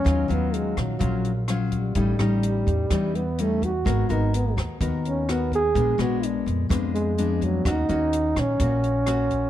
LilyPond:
<<
  \new Staff \with { instrumentName = "Nylon-string guitar" } { \time 4/4 \key ees \minor \tempo 4 = 126 << { <ges des' f'>8 <ges des' f'>4. <ges des' f'>8 r8 <ges des' f'>4 | <g cis' dis'>8 <g cis' dis'>4. <g cis' dis'>8 r8 <g cis' dis'>8 r8 | <ces' ges' bes'>8 <ces' ges' bes'>4. <ces' ges' bes'>4 <ces' ges' bes'>8 r8 | <aes ces' d'>8 <aes ces' d'>4. <aes ces' d'>4 <aes ces' d'>4 |
<bes des' ges'>8 <bes des' ges'>4. <bes des' ges'>4 <bes des' ges'>4 | } \\ { ees2 bes,2 | a,2 e2 | aes2 ees2 | bes,2 f2 |
ees2 bes,2 | } >> }
  \new Staff \with { instrumentName = "Trombone" } { \time 4/4 \key ees \minor des'8 ces'8 aes8 ges4. r8 g8~ | g2~ g8 ces'8 a8 ges'8~ | ges'8 ees'8 ces'8 r4 des'8 ces'8 aes'8~ | aes'8 ges'8 d'8 r4 aes4 ges8 |
ees'4. des'2~ des'8 | }
  \new Staff \with { instrumentName = "Upright bass" } { \clef bass \time 4/4 \key ees \minor ees,8 ees,4 bes,,8 bes,,2 | a,,8 a,,4 e,8 e,2 | aes,,8 aes,,4 ees,8 ees,2 | bes,,8 bes,,4 f,8 f,2 |
ees,8 ees,4 bes,,8 bes,,2 | }
  \new DrumStaff \with { instrumentName = "Drums" } \drummode { \time 4/4 <hh bd ss>8 hh8 hh8 <hh bd ss>8 <hh bd>8 hh8 <hh ss>8 <hh bd>8 | <hh bd>8 <hh ss>8 hh8 <hh bd>8 <hh bd ss>8 hh8 hh8 <hh bd>8 | <hh bd ss>8 hh8 hh8 <hh bd ss>8 <hh bd>8 hh8 <hh ss>8 <hh bd>8 | <hh bd>8 <hh ss>8 hh8 <hh bd>8 <hh bd ss>8 hh8 hh8 <hh bd>8 |
<hh bd ss>8 hh8 hh8 <hh bd ss>8 <hh bd>8 hh8 <hh ss>8 <hh bd>8 | }
>>